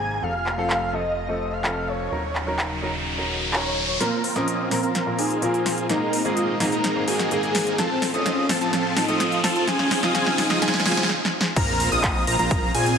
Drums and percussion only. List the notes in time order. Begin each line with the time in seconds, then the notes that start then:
0.46 clap
0.70 clap
1.64 clap
2.35 clap
2.59 clap
3.53 clap
4.00 snare, closed hi-hat
4.24 open hi-hat
4.36 snare, closed hi-hat
4.48 closed hi-hat
4.71 snare, open hi-hat
4.83 closed hi-hat
4.95 snare, closed hi-hat
5.19 open hi-hat
5.30 closed hi-hat
5.42 closed hi-hat
5.54 closed hi-hat
5.66 snare, open hi-hat
5.78 closed hi-hat
5.89 snare, closed hi-hat
6.13 open hi-hat
6.25 closed hi-hat
6.37 closed hi-hat
6.60 snare, open hi-hat
6.72 closed hi-hat
6.84 snare, closed hi-hat
7.08 open hi-hat
7.19 snare, closed hi-hat
7.31 closed hi-hat
7.43 closed hi-hat
7.55 snare, open hi-hat
7.67 closed hi-hat
7.78 snare, closed hi-hat
8.02 snare, open hi-hat
8.14 closed hi-hat
8.26 snare, closed hi-hat
8.49 snare, open hi-hat
8.61 closed hi-hat
8.73 snare, closed hi-hat
8.97 snare, open hi-hat
9.08 closed hi-hat
9.20 snare, closed hi-hat
9.32 closed hi-hat
9.44 snare, open hi-hat
9.56 closed hi-hat
9.67 snare, closed hi-hat
9.79 snare
9.91 snare, open hi-hat
10.03 snare, closed hi-hat
10.15 snare, closed hi-hat
10.27 snare
10.38 snare, open hi-hat
10.50 snare, closed hi-hat
10.62 snare, closed hi-hat
10.68 snare
10.74 snare
10.80 snare
10.86 snare, open hi-hat
10.91 snare
10.97 snare
11.03 snare
11.09 snare
11.25 snare
11.41 snare
11.56 kick, closed hi-hat, crash
11.80 open hi-hat, ride
11.92 closed hi-hat
12.04 kick, clap, closed hi-hat
12.27 open hi-hat, ride
12.39 closed hi-hat
12.51 kick, closed hi-hat
12.75 open hi-hat, ride
12.86 closed hi-hat